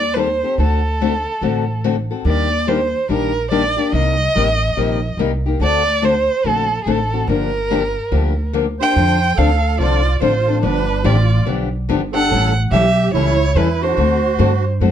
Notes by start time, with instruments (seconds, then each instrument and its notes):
Already playing: upright bass D#2, violin D5
0.13 steel-string acoustic guitar D#3 G3 C4 G4 A4, violin B4
0.19 violin C5
0.43 steel-string acoustic guitar C4 G4 A4
0.58 upright bass D2, steel-string acoustic guitar D3 A3 C4 F#4 A4
0.62 violin A4
1.01 steel-string acoustic guitar D3 A3 C4 F#4 A4
1.42 upright bass A1, steel-string acoustic guitar D3 A3 C4 F#4 A4
1.84 steel-string acoustic guitar D3 A3 C4 F#4 A4
2.11 steel-string acoustic guitar C4 F#4 A4
2.25 upright bass D#2, steel-string acoustic guitar D#3 G3 A#3 D4 G4, violin D5
2.67 steel-string acoustic guitar D#3 G3 A#3 D4 G4, violin C5
3.09 upright bass A#1, steel-string acoustic guitar D#3 G3 A#3 D4 G4, violin A#4
3.51 steel-string acoustic guitar D#3 G3 A#3 D4 G4, violin D5
3.77 steel-string acoustic guitar A#3 D4 G4
3.93 upright bass C2, steel-string acoustic guitar C3 G3 A#3 D#4 G4, violin D#5
4.36 upright bass A1, steel-string acoustic guitar C3 G3 A#3 D#4 G4
4.77 upright bass A#1, steel-string acoustic guitar C3 G3 A#3 D#4 G4
5.17 upright bass C2, steel-string acoustic guitar C3 G3 A#3 D#4 G4
5.46 steel-string acoustic guitar A#3 D#4 G4
5.60 upright bass D2, steel-string acoustic guitar D3 A3 C4 F#4 A4, violin D5
6.02 steel-string acoustic guitar D3 A3 C4 F#4 A4, violin C5
6.44 upright bass A#1, steel-string acoustic guitar D3 A3 C4 F#4 A4, violin A4
6.83 upright bass A1, steel-string acoustic guitar D3 A3, violin G#4
6.87 steel-string acoustic guitar C4 F#4 A4, violin A4
7.13 steel-string acoustic guitar C4 F#4 A4
7.27 upright bass G1, steel-string acoustic guitar D3 F3 A#3 D4 G4, violin A#4
7.70 steel-string acoustic guitar D3 F3 A#3 D4 G4
8.12 upright bass D2, steel-string acoustic guitar D3 F3 A#3 D4 G4
8.53 steel-string acoustic guitar D3 F3 A#3 D4 G4
8.79 steel-string acoustic guitar A#3 D4 G4, accordion C5, violin G5
8.96 upright bass F2, steel-string acoustic guitar D3 F3 C4 D4 A4
9.35 upright bass D2, steel-string acoustic guitar D3 F3 C4 D4 A4, accordion A4, violin F5
9.77 upright bass C2, steel-string acoustic guitar D3 F3 C4 D4 A4, accordion F4, violin D5
10.19 upright bass A1, steel-string acoustic guitar D3 F3 C4 D4 A4, accordion F4, violin C5
10.47 steel-string acoustic guitar C4 D4 A4
10.61 upright bass G1, steel-string acoustic guitar D3 F3 B3 D4 G4, accordion D4, violin B4
11.03 upright bass A1, steel-string acoustic guitar D3 F3 B3 D4 G4, accordion F4, violin D5
11.45 upright bass B1, steel-string acoustic guitar D3 F3 B3 D4 G4
11.89 upright bass G1, steel-string acoustic guitar D3 F3 B3 D4 G4
12.13 steel-string acoustic guitar B3 D4 G4, accordion A4, violin F#5
12.31 upright bass A1, steel-string acoustic guitar E3 G3 C#4 E4 A4
12.71 upright bass B1, steel-string acoustic guitar E3 G3 C#4 E4 A4, accordion G4, violin E5
13.13 upright bass C#2, steel-string acoustic guitar E3 G3 C#4 E4 A4, accordion E4, violin C#5
13.55 upright bass E2, steel-string acoustic guitar E3 G3 C#4 E4 A4, accordion E4, violin B4
13.80 steel-string acoustic guitar C#4 E4 A4, accordion F#4, violin C5
13.97 upright bass D2, steel-string acoustic guitar D3 A3 C4 F#4 A4
14.38 upright bass G2, steel-string acoustic guitar D3 A3 C4 F#4 A4
14.80 upright bass F#2, steel-string acoustic guitar D3 A3 C4 F#4 A4